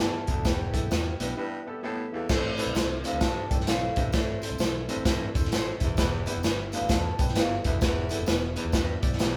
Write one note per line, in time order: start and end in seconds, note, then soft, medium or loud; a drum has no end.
0.00 0.22 E2 medium
0.00 2.26 E3 medium
0.00 2.26 G3 medium
0.00 0.13 B3 medium
0.00 0.19 B3 medium
0.00 2.25 B3 medium
0.00 0.13 E4 medium
0.00 0.19 E4 medium
0.00 2.25 E4 medium
0.00 0.13 G4 medium
0.00 0.19 G4 medium
0.00 0.14 B4 medium
0.00 0.19 D5 loud
0.00 0.46 A5 medium
0.27 0.34 E1 medium
0.27 0.42 D2 medium
0.27 0.40 B3 medium
0.27 0.42 E4 medium
0.27 0.40 E4 medium
0.27 0.40 G4 medium
0.27 0.40 A4 medium
0.27 kick medium
0.27 closed hi-hat medium
0.27 tambourine medium
0.36 0.43 F1 medium
0.44 0.74 E1 loud
0.44 0.81 E2 medium
0.44 1.16 E3 medium
0.44 0.65 B3 medium
0.44 0.65 E4 medium
0.44 0.65 G4 medium
0.44 0.66 B4 loud
0.44 1.79 G5 loud
0.44 kick loud
0.44 snare medium
0.44 closed hi-hat medium
0.44 tambourine loud
0.72 0.86 B1 medium
0.72 0.85 B3 medium
0.72 0.85 E4 medium
0.72 0.88 E4 medium
0.72 0.85 G4 medium
0.72 0.86 A4 loud
0.72 kick medium
0.72 closed hi-hat medium
0.72 tambourine medium
0.90 1.13 E2 loud
0.90 1.11 B3 medium
0.90 1.05 B3 medium
0.90 1.11 E4 medium
0.90 1.06 E4 medium
0.90 1.12 G4 medium
0.90 1.06 G4 medium
0.90 1.12 B4 medium
0.90 1.06 B4 loud
0.90 snare loud
0.90 closed hi-hat medium
0.90 tambourine loud
1.20 1.33 B1 medium
1.20 1.34 G2 medium
1.20 1.32 B3 medium
1.20 1.34 B3 medium
1.20 1.32 E4 medium
1.20 1.32 G4 medium
1.20 1.32 B4 loud
1.20 closed hi-hat medium
1.20 tambourine medium
1.37 1.60 G2 medium
1.37 1.58 B3 medium
1.37 1.81 D4 medium
1.37 1.58 E4 medium
1.37 1.58 G4 medium
1.37 1.58 B4 loud
1.67 1.78 B3 medium
1.67 1.78 E4 medium
1.67 1.79 G4 medium
1.67 1.79 A4 loud
1.67 1.82 A5 medium
1.83 2.07 A2 medium
1.83 1.97 B3 medium
1.83 2.04 B3 loud
1.83 1.98 E4 medium
1.83 2.04 E4 loud
1.83 1.98 G4 medium
1.83 2.04 G4 loud
1.83 2.04 A4 loud
1.83 1.98 B4 medium
1.83 2.11 G5 medium
2.12 2.26 E2 medium
2.12 2.25 B3 medium
2.12 2.27 E4 medium
2.12 2.25 E4 medium
2.12 2.25 G4 medium
2.12 2.25 A4 loud
2.12 2.29 F5 medium
2.29 2.57 A1 loud
2.29 2.65 A2 loud
2.29 3.01 A2 medium
2.29 9.37 E3 medium
2.29 5.94 A3 medium
2.29 2.50 C4 loud
2.29 5.94 C4 medium
2.29 9.37 E4 medium
2.29 2.50 E4 loud
2.29 2.50 A4 loud
2.29 2.50 C5 loud
2.29 kick loud
2.29 snare loud
2.29 crash loud
2.29 tambourine loud
2.58 2.70 C4 loud
2.58 2.73 E4 medium
2.58 2.71 E4 loud
2.58 2.71 A4 loud
2.58 2.71 B4 loud
2.58 closed hi-hat medium
2.58 tambourine medium
2.67 2.73 B1 medium
2.74 3.03 C2 medium
2.74 2.95 C4 medium
2.74 2.90 C4 medium
2.74 2.96 E4 medium
2.74 2.90 E4 loud
2.74 2.96 A4 medium
2.74 2.90 A4 loud
2.74 2.96 C5 loud
2.74 2.90 C5 loud
2.74 snare loud
2.74 closed hi-hat medium
2.74 tambourine loud
3.04 3.18 G2 medium
3.04 3.16 C4 medium
3.04 3.19 C4 medium
3.04 3.16 E4 medium
3.04 3.16 A4 medium
3.04 3.16 C5 medium
3.04 3.22 F5 medium
3.04 closed hi-hat medium
3.04 tambourine medium
3.13 3.19 D2 medium
3.21 3.45 G2 medium
3.21 3.42 C4 medium
3.21 3.65 D4 medium
3.21 3.42 E4 medium
3.21 3.42 A4 medium
3.21 3.42 C5 medium
3.21 3.51 A5 loud
3.21 kick loud
3.21 snare loud
3.21 closed hi-hat loud
3.21 tambourine medium
3.36 muted fingered electric bass stroke soft
3.50 3.63 C2 medium
3.50 3.62 C4 medium
3.50 3.62 E4 medium
3.50 3.63 A4 medium
3.50 3.63 D5 medium
3.50 3.68 G5 loud
3.50 kick loud
3.50 closed hi-hat medium
3.50 tambourine medium
3.60 snare soft
3.66 3.89 B1 loud
3.66 3.91 A2 medium
3.66 3.88 C4 loud
3.66 3.82 C4 medium
3.66 3.88 E4 medium
3.66 3.82 E4 medium
3.66 3.88 A4 medium
3.66 3.82 A4 medium
3.66 3.82 C5 medium
3.66 3.88 D5 loud
3.66 3.97 F5 medium
3.66 snare loud
3.66 closed hi-hat loud
3.66 tambourine medium
3.96 4.09 A#1 medium
3.96 4.10 G2 medium
3.96 4.08 C4 medium
3.96 4.11 E4 medium
3.96 4.09 E4 medium
3.96 4.09 A4 medium
3.96 4.09 C5 medium
3.96 4.55 E5 medium
3.96 kick medium
3.96 closed hi-hat medium
3.96 tambourine medium
4.12 4.41 A1 loud
4.12 4.48 A2 medium
4.12 4.85 A2 medium
4.12 4.34 C4 medium
4.12 4.34 E4 medium
4.12 4.34 A4 medium
4.12 4.34 D5 loud
4.12 kick loud
4.12 snare loud
4.12 closed hi-hat medium
4.12 tambourine loud
4.42 4.54 C4 medium
4.42 4.55 E4 medium
4.42 4.57 E4 medium
4.42 4.55 A4 medium
4.42 4.55 C5 loud
4.42 closed hi-hat medium
4.42 tambourine medium
4.51 4.57 C2 medium
4.58 4.87 B1 loud
4.58 4.74 C4 medium
4.58 4.80 C4 medium
4.58 4.80 E4 medium
4.58 4.74 E4 loud
4.58 4.74 A4 medium
4.58 4.81 A4 medium
4.58 4.81 C5 medium
4.58 4.75 C5 loud
4.58 snare loud
4.58 closed hi-hat medium
4.58 tambourine loud
4.88 5.02 G2 medium
4.88 5.00 C4 medium
4.88 5.03 C4 medium
4.88 5.01 E4 medium
4.88 5.01 A4 medium
4.88 5.01 C5 loud
4.88 closed hi-hat medium
4.88 tambourine medium
4.97 5.03 A1 medium
5.05 5.29 G2 medium
5.05 5.27 A2 loud
5.05 5.26 C4 medium
5.05 5.49 D4 medium
5.05 5.26 E4 medium
5.05 5.26 A4 medium
5.05 5.26 C5 medium
5.05 kick medium
5.05 snare loud
5.05 closed hi-hat loud
5.05 tambourine medium
5.35 5.47 E2 medium
5.35 5.47 C4 medium
5.35 5.47 E4 medium
5.35 5.47 A4 medium
5.35 5.47 C5 loud
5.35 kick loud
5.35 closed hi-hat medium
5.35 tambourine medium
5.45 snare soft
5.51 5.73 A1 loud
5.51 5.75 A2 medium
5.51 5.66 C4 medium
5.51 5.66 E4 medium
5.51 5.80 G4 medium
5.51 5.66 A4 medium
5.51 5.66 C5 medium
5.51 5.80 E5 medium
5.51 5.79 C6 medium
5.51 snare loud
5.51 closed hi-hat medium
5.51 tambourine medium
5.80 5.93 F1 medium
5.80 5.95 E2 medium
5.80 5.94 E4 medium
5.80 5.96 E4 medium
5.80 6.25 C5 medium
5.80 5.97 E5 medium
5.80 kick medium
5.80 closed hi-hat medium
5.80 tambourine medium
5.96 6.25 E1 loud
5.96 6.33 E2 medium
5.96 6.69 E3 medium
5.96 9.37 G3 medium
5.96 9.37 B3 medium
5.96 6.18 B3 loud
5.96 6.18 E4 loud
5.96 6.18 G4 loud
5.96 6.19 B4 loud
5.96 kick loud
5.96 snare medium
5.96 closed hi-hat medium
5.96 tambourine loud
6.26 6.39 B3 loud
6.26 6.41 E4 medium
6.26 6.39 E4 loud
6.26 6.39 G4 loud
6.26 6.39 B4 loud
6.26 closed hi-hat medium
6.26 tambourine medium
6.36 6.42 F1 medium
6.43 6.71 G1 loud
6.43 6.58 B3 medium
6.43 6.64 B3 medium
6.43 6.58 E4 medium
6.43 6.65 E4 medium
6.43 6.58 G4 medium
6.43 6.65 G4 medium
6.43 6.58 B4 loud
6.43 6.65 B4 loud
6.43 snare loud
6.43 closed hi-hat medium
6.43 tambourine loud
6.72 6.86 D2 medium
6.72 6.85 B3 medium
6.72 6.87 B3 medium
6.72 6.85 E4 medium
6.72 6.85 G4 medium
6.72 6.85 B4 medium
6.72 6.89 F5 medium
6.72 closed hi-hat medium
6.72 tambourine medium
6.81 6.88 A1 medium
6.89 7.13 D2 medium
6.89 7.11 E2 loud
6.89 7.10 B3 medium
6.89 7.33 D4 medium
6.89 7.10 E4 medium
6.89 7.11 G4 medium
6.89 7.11 B4 medium
6.89 7.20 A5 loud
6.89 kick loud
6.89 snare loud
6.89 closed hi-hat loud
6.89 tambourine loud
7.19 7.31 B1 medium
7.19 7.31 B3 medium
7.19 7.31 E4 medium
7.19 7.31 G4 medium
7.19 7.31 B4 medium
7.19 7.37 G5 loud
7.19 kick loud
7.19 closed hi-hat medium
7.19 tambourine medium
7.28 snare soft
7.35 7.57 G1 loud
7.35 7.59 E2 medium
7.35 7.50 B3 medium
7.35 7.56 B3 loud
7.35 7.50 E4 medium
7.35 7.57 E4 medium
7.35 7.50 G4 loud
7.35 7.57 G4 medium
7.35 7.50 B4 medium
7.35 7.57 B4 loud
7.35 7.50 F5 medium
7.35 snare loud
7.35 closed hi-hat loud
7.35 tambourine medium
7.64 7.77 F1 medium
7.64 7.79 D2 medium
7.64 7.77 B3 medium
7.64 7.78 E4 medium
7.64 7.77 E4 medium
7.64 7.77 G4 medium
7.64 7.77 B4 medium
7.64 8.25 E5 medium
7.64 kick medium
7.64 closed hi-hat medium
7.64 tambourine medium
7.81 8.09 E1 loud
7.81 8.17 E2 medium
7.81 8.53 E3 medium
7.81 8.02 B3 loud
7.81 8.02 E4 medium
7.81 8.02 G4 medium
7.81 8.03 B4 loud
7.81 kick loud
7.81 snare loud
7.81 closed hi-hat medium
7.81 tambourine loud
8.09 8.22 B3 loud
8.09 8.23 E4 medium
8.09 8.25 E4 medium
8.09 8.23 G4 medium
8.09 8.23 A4 loud
8.09 closed hi-hat medium
8.09 tambourine medium
8.19 8.25 F1 medium
8.26 8.55 E1 loud
8.26 8.48 B3 medium
8.26 8.42 B3 medium
8.26 8.42 E4 medium
8.26 8.48 E4 medium
8.26 8.48 G4 medium
8.26 8.42 G4 medium
8.26 8.42 B4 medium
8.26 8.48 B4 medium
8.26 snare loud
8.26 closed hi-hat medium
8.26 tambourine loud
8.56 8.71 E2 medium
8.56 8.68 B3 medium
8.56 8.71 B3 medium
8.56 8.68 E4 medium
8.56 8.68 G4 medium
8.56 8.69 B4 loud
8.56 closed hi-hat medium
8.56 tambourine medium
8.65 8.71 E2 medium
8.72 8.95 E2 loud
8.72 8.97 G2 medium
8.72 8.94 B3 medium
8.72 9.17 D4 medium
8.72 8.94 E4 medium
8.72 8.94 G4 medium
8.72 8.94 B4 loud
8.72 kick medium
8.72 snare loud
8.72 closed hi-hat loud
8.72 tambourine medium
9.02 9.15 B1 medium
9.02 9.14 B3 medium
9.02 9.14 E4 medium
9.02 9.15 G4 medium
9.02 9.15 D5 loud
9.02 9.18 E5 medium
9.02 kick loud
9.02 closed hi-hat medium
9.02 tambourine medium
9.12 snare soft
9.19 9.37 B1 loud
9.19 9.37 E2 medium
9.19 9.34 B3 medium
9.19 9.34 E4 medium
9.19 9.34 G4 medium
9.19 9.37 G4 medium
9.19 9.34 B4 medium
9.19 9.37 E5 medium
9.19 9.37 G5 medium
9.19 snare loud
9.19 closed hi-hat loud
9.19 tambourine medium